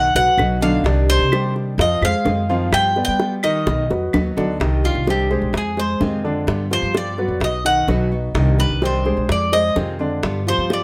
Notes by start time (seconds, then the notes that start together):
Already playing: B1 F#5
0.15 B1 F#3 F#4 B4 F#5, high bongo
0.38 B1 F#3 B3 D#4 F#4, high bongo, low bongo, claves
0.61 D3 F#3 B3 D4 D#4 F#4 D5 F5
0.84 C2 C3 D#3 G3 D4 G4 D5, high bongo
1.09 C5, high bongo
1.20 C3
1.31 D#3 G3 D4 G4 C5, high bongo, claves
1.56 high bongo
1.78 F2 F3 F4 D#5 F5, muted nylon-string guitar stroke, high bongo
2.01 F2 G#3 G#4 C5 F5, high bongo, claves
2.25 F#2 D#3 G#3 C4 F4, high bongo, low bongo
2.49 D#3 F3 G#3 C4 F4 F5
2.72 G2 G3 B3 F4 G5, high bongo, claves
2.96 B3 B4 D5, high bongo
3.05 G3 G5
3.20 G3 B3 F4, high bongo
3.43 D#3 D#4 D#5, high bongo, claves
3.66 B1, muted nylon-string guitar stroke, high bongo
3.90 F2 F#3 F#4 B4, high bongo
4.13 D#2 F#3 B3 D#4 F#4, low bongo, claves
4.37 D2 D3 F#3 B3 D4 D#4 F#4 D5, low bongo
4.60 C2 C3 D#3 G3 D4 D#4 G4 D#5, high bongo
4.84 G3 D4 F4 G4, high bongo
4.95 C2
5.07 C3 D#3 G3 D4 G4 C5, high bongo
5.31 G3 G#3 D4 G4 G#4 C5, high bongo
5.42 B1
5.53 F2, muted nylon-string guitar stroke, high bongo
5.57 G#4
5.77 G#3 G#4 C5, high bongo
6.00 F2 C3 D#3 G#3 C4 F4, high bongo, low bongo
6.24 D3 G#3 C4 D4 F4 D5
6.47 G2 G3 B3 F4, high bongo
6.70 F3 B3 F4 G4 C5, high bongo
6.82 G2
6.94 G3 B3 F4 D5, high bongo
7.17 F#3 B3 F4 F#4 B4, high bongo
7.28 F2
7.40 B1 D#5, muted nylon-string guitar stroke, high bongo
7.65 D#3 D#4 D#5 F#5, high bongo
7.87 B1 B2 F#3 B3 D#4 F#4 B4, high bongo, low bongo
8.12 B3 D#4 F#4
8.35 C2 C3 D#3 G3 D4 D#4 G4 D#5, high bongo
8.58 G3 D4 G4 B4, high bongo
8.70 C2
8.82 C3 D#3 G3 D4 G4 C5, high bongo
9.05 G3 G#3 D4 G4 G#4 C5, high bongo
9.17 B1
9.29 F2 D5, muted nylon-string guitar stroke, high bongo
9.52 G#3 G#4 C5 D#5, high bongo
9.76 F2 C3 D#3 G#3 C4 F4, high bongo, low bongo
9.99 D3 G#3 C4 D4 F4 D5
10.23 G2 G3 B3 F4, high bongo
10.47 F3 B3 F4 G4 C5, high bongo
10.58 G2
10.70 G3 B3 F4 D5, high bongo